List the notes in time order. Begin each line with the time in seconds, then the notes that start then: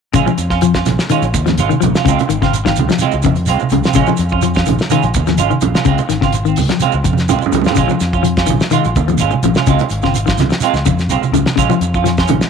0.13 A#1 C#3 G#3 C#4 F4, kick, closed hi-hat, shekere
0.26 F3, muted clean electric guitar stroke, high conga, shekere
0.38 F2, muted clean electric guitar stroke, closed hi-hat, shekere
0.50 C#4 F4, kick, snare, shekere
0.61 F3, muted clean electric guitar stroke, closed hi-hat, shekere
0.74 C#4 F4, kick, snare, closed hi-hat, shekere
0.86 A#1, snare, closed hi-hat, high conga, low conga, shekere
0.99 muted clean electric guitar stroke, snare, shekere
1.09 D#3 G#3 C#4 F4, muted fingered electric bass stroke, closed hi-hat, shekere
1.22 A#1, muted clean electric guitar stroke, closed hi-hat, shekere
1.33 D#2, muted clean electric guitar stroke, kick, closed hi-hat, high conga, shekere
1.46 F3, snare, closed hi-hat, low conga, shekere
1.58 G#1 G#3 C#4 F4, closed hi-hat, shekere
1.69 D#3, muted fingered electric bass stroke, muted clean electric guitar stroke, high conga, shekere
1.81 A#1 F3, muted clean electric guitar stroke, closed hi-hat, high conga, low conga, shekere
1.95 C#4 F4, snare, high conga, shekere
2.05 C#2 C#3 G#3 C4 F4, kick, closed hi-hat, shekere
2.19 muted clean electric guitar stroke, closed hi-hat, high conga, shekere
2.29 G#1 D#3, muted clean electric guitar stroke, closed hi-hat, shekere
2.42 C#3 C4 F4, kick, snare, shekere
2.53 muted clean electric guitar stroke, closed hi-hat, shekere
2.65 D#3 C4 F4, kick, snare, shekere
2.76 C#2, closed hi-hat, high conga, low conga, shekere
2.89 F3, muted clean electric guitar stroke, snare, closed hi-hat, shekere
2.99 G#3 C4 F4, muted fingered electric bass stroke, closed hi-hat, high conga, shekere
3.12 C#2, muted clean electric guitar stroke, shekere
3.22 F2 C#3, muted clean electric guitar stroke, kick, closed hi-hat, high conga, shekere
3.35 closed hi-hat, shekere
3.46 C2 G#3 C4 F4, closed hi-hat, shekere
3.60 muted clean electric guitar stroke, high conga, shekere
3.70 C#2 C#3, muted clean electric guitar stroke, closed hi-hat, high conga, low conga, shekere
3.83 C4 F4, snare, closed hi-hat, high conga, shekere
3.93 A#1 C#3 G#3 C#4 F4, kick, closed hi-hat, shekere
4.06 F3, muted clean electric guitar stroke, high conga, shekere
4.17 F2, muted clean electric guitar stroke, closed hi-hat, shekere
4.29 F4, kick, shekere
4.34 C#4
4.42 F3, muted clean electric guitar stroke, closed hi-hat, shekere
4.54 C#4 F4, kick, snare, closed hi-hat, shekere
4.65 A#1 D#3, closed hi-hat, high conga, low conga, shekere
4.79 muted clean electric guitar stroke, snare, shekere
4.90 D#3 G#3 C#4 F4, muted fingered electric bass stroke, closed hi-hat, high conga, shekere
5.02 A#1, muted clean electric guitar stroke, closed hi-hat, shekere
5.14 D#2, muted clean electric guitar stroke, kick, closed hi-hat, high conga, shekere
5.27 F3, snare, closed hi-hat, low conga, shekere
5.38 G#1 G#3 C#4 F4, closed hi-hat, shekere
5.50 D#3, muted clean electric guitar stroke, muted fingered electric bass stroke, high conga, shekere
5.61 A#1, muted clean electric guitar stroke, closed hi-hat, low conga, shekere
5.75 C#4 F4, snare, high conga, shekere
5.85 C#2 C#3 G#3 C4 F4, kick, closed hi-hat, shekere
5.98 muted clean electric guitar stroke, closed hi-hat, high conga, shekere
6.09 G#1 D#3, muted clean electric guitar stroke, snare, closed hi-hat, shekere
6.21 C#3 C4 F4, kick, snare, shekere
6.33 muted clean electric guitar stroke, closed hi-hat, shekere
6.45 D#3 C4, shekere
6.56 C#2, open hi-hat, high conga, low conga, shekere
6.69 F3, muted clean electric guitar stroke, snare, closed hi-hat, shekere
6.80 G#3 C4 F4, muted fingered electric bass stroke, closed hi-hat, high conga, shekere
6.92 C#2, muted clean electric guitar stroke, shekere
7.04 F2, muted clean electric guitar stroke, kick, closed hi-hat, high conga, shekere
7.13 high conga
7.18 snare, closed hi-hat, shekere
7.29 C2 G#3 C4 F4, closed hi-hat, low conga, shekere
7.39 muted clean electric guitar stroke, muted fingered electric bass stroke, high conga, shekere
7.46 low conga
7.52 C#2 C#3, muted clean electric guitar stroke, closed hi-hat, low conga, shekere
7.62 low conga, shekere
7.66 C4 F4, snare, closed hi-hat
7.70 low conga
7.75 A#1 C#3 G#3 C#4 F4, kick, closed hi-hat, shekere
7.88 F3, muted clean electric guitar stroke, high conga, shekere
8.00 F2, muted clean electric guitar stroke, snare, closed hi-hat, shekere
8.13 C#4 F4, kick, shekere
8.23 F3, muted clean electric guitar stroke, closed hi-hat, shekere
8.36 C#4 F4, kick, snare, closed hi-hat, shekere
8.46 A#1 D#3, closed hi-hat, high conga, low conga, shekere
8.60 muted clean electric guitar stroke, snare, shekere
8.71 D#3 G#3 F4, muted fingered electric bass stroke, muted clean electric guitar stroke, closed hi-hat, high conga, shekere
8.85 A#1, muted clean electric guitar stroke, closed hi-hat, shekere
8.96 D#2, muted clean electric guitar stroke, kick, closed hi-hat, high conga, shekere
9.08 F3, closed hi-hat, low conga, shekere
9.18 G#1 G#3 C#4 F4, closed hi-hat, shekere
9.31 muted clean electric guitar stroke, high conga, shekere
9.43 A#1 F3, muted clean electric guitar stroke, closed hi-hat, low conga, shekere
9.55 C#4 F4, snare, high conga, shekere
9.66 C#2 C#3 G#3 C4 F4, kick, closed hi-hat, shekere
9.79 muted clean electric guitar stroke, closed hi-hat, high conga, shekere
9.89 G#1, muted clean electric guitar stroke, closed hi-hat, shekere
10.02 C#3 C4 F4, kick, snare, shekere
10.14 muted clean electric guitar stroke, closed hi-hat, shekere
10.26 D#3 F4, muted clean electric guitar stroke, kick, snare, shekere
10.38 C#2, snare, closed hi-hat, high conga, low conga, shekere
10.50 muted clean electric guitar stroke, snare, closed hi-hat, shekere
10.60 G#3 C4 F4, muted fingered electric bass stroke, closed hi-hat, shekere
10.73 C#2, muted clean electric guitar stroke, snare, shekere
10.85 F2 C#3, muted clean electric guitar stroke, kick, closed hi-hat, high conga, shekere
10.98 snare, closed hi-hat, shekere
11.08 C2 G#3 C4 F4, closed hi-hat, shekere
11.23 muted clean electric guitar stroke, high conga, shekere
11.32 C#2 C#3, muted clean electric guitar stroke, closed hi-hat, low conga, shekere
11.46 muted clean electric guitar stroke, snare, closed hi-hat, high conga, shekere
11.56 A#1 C#3 G#3 C#4 F4, kick, closed hi-hat, shekere
11.70 F3, muted clean electric guitar stroke, high conga, shekere
11.81 F2, muted clean electric guitar stroke, closed hi-hat, shekere
11.94 C#4 F4, kick, shekere
12.04 F3, snare, closed hi-hat, shekere
12.08 muted clean electric guitar stroke
12.17 C#4 F4, kick, snare, closed hi-hat, shekere
12.28 A#1 D#3, closed hi-hat, high conga, low conga, shekere
12.41 muted clean electric guitar stroke, snare, shekere